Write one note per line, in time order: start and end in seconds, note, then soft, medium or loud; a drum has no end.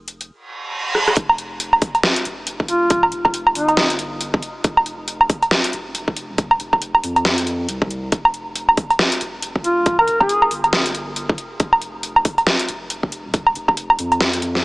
0.00 0.30 F1 medium
0.08 closed hi-hat soft
0.21 closed hi-hat soft
0.30 reverse cymbal medium
0.95 cross-stick medium
1.08 cross-stick medium
1.16 1.80 F1 medium
1.16 kick loud
1.16 closed hi-hat medium
1.29 low woodblock medium
1.38 closed hi-hat medium
1.60 closed hi-hat medium
1.73 low woodblock medium
1.82 kick loud
1.82 open hi-hat loud
1.95 closed hi-hat soft
1.95 low woodblock medium
2.03 snare loud
2.16 closed hi-hat medium
2.25 3.11 F1 loud
2.25 closed hi-hat medium
2.47 closed hi-hat medium
2.60 kick medium
2.68 3.03 F4 loud
2.68 closed hi-hat medium
2.90 kick loud
2.90 closed hi-hat medium
3.03 low woodblock medium
3.12 3.54 F1 medium
3.12 closed hi-hat medium
3.25 kick medium
3.25 low woodblock medium
3.34 closed hi-hat medium
3.47 low woodblock medium
3.55 4.41 G1 medium
3.55 3.90 D#4 loud
3.55 open hi-hat medium
3.69 closed hi-hat soft
3.69 low woodblock medium
3.77 snare loud
3.90 closed hi-hat medium
3.99 closed hi-hat medium
4.21 closed hi-hat medium
4.34 kick loud
4.43 closed hi-hat medium
4.64 5.28 F1 medium
4.64 kick loud
4.64 closed hi-hat medium
4.77 low woodblock medium
4.86 closed hi-hat medium
5.08 closed hi-hat medium
5.21 low woodblock medium
5.30 kick loud
5.30 open hi-hat medium
5.42 closed hi-hat soft
5.42 low woodblock medium
5.51 snare loud
5.64 closed hi-hat medium
5.73 6.59 F1 loud
5.73 closed hi-hat medium
5.95 closed hi-hat medium
6.08 kick medium
6.17 closed hi-hat medium
6.38 kick loud
6.38 closed hi-hat medium
6.51 low woodblock medium
6.60 7.02 F1 loud
6.60 closed hi-hat medium
6.73 kick medium
6.73 low woodblock medium
6.82 closed hi-hat medium
6.95 low woodblock medium
7.03 7.67 F2 loud
7.03 open hi-hat medium
7.16 closed hi-hat soft
7.16 low woodblock medium
7.25 snare loud
7.38 closed hi-hat medium
7.47 closed hi-hat soft
7.69 8.11 C2 loud
7.69 closed hi-hat medium
7.82 kick loud
7.91 closed hi-hat medium
8.12 8.76 F1 medium
8.12 kick loud
8.12 closed hi-hat medium
8.25 low woodblock medium
8.34 closed hi-hat soft
8.55 closed hi-hat medium
8.69 low woodblock medium
8.77 kick loud
8.77 open hi-hat medium
8.90 closed hi-hat soft
8.90 low woodblock medium
8.99 snare loud
9.12 closed hi-hat medium
9.21 10.06 F1 medium
9.21 closed hi-hat medium
9.42 closed hi-hat medium
9.56 kick medium
9.64 9.98 F4 medium
9.64 closed hi-hat medium
9.86 kick loud
9.86 closed hi-hat medium
9.99 10.18 A#4 loud
9.99 low woodblock medium
10.08 10.50 F1 loud
10.08 closed hi-hat soft
10.20 10.51 G#4 medium
10.20 kick medium
10.20 low woodblock medium
10.29 closed hi-hat medium
10.42 low woodblock medium
10.51 11.37 G1 medium
10.51 open hi-hat medium
10.64 closed hi-hat soft
10.64 low woodblock medium
10.73 snare loud
10.86 closed hi-hat medium
10.95 closed hi-hat soft
11.16 closed hi-hat medium
11.29 kick loud
11.38 closed hi-hat medium
11.60 12.24 F1 medium
11.60 kick loud
11.60 closed hi-hat medium
11.73 low woodblock medium
11.82 closed hi-hat soft
12.03 closed hi-hat medium
12.16 low woodblock medium
12.25 kick loud
12.25 open hi-hat medium
12.38 closed hi-hat soft
12.38 low woodblock medium
12.47 snare loud
12.59 closed hi-hat medium
12.68 13.54 F1 medium
12.68 closed hi-hat medium
12.90 closed hi-hat medium
13.03 kick medium
13.12 closed hi-hat medium
13.34 kick loud
13.34 closed hi-hat medium
13.47 low woodblock medium
13.55 13.98 F1 loud
13.55 closed hi-hat medium
13.68 kick medium
13.68 low woodblock medium
13.77 closed hi-hat medium
13.90 low woodblock medium
13.99 14.65 F2 loud
13.99 open hi-hat loud
14.12 closed hi-hat soft
14.12 low woodblock medium
14.21 snare loud
14.33 closed hi-hat medium
14.42 closed hi-hat medium
14.55 snare soft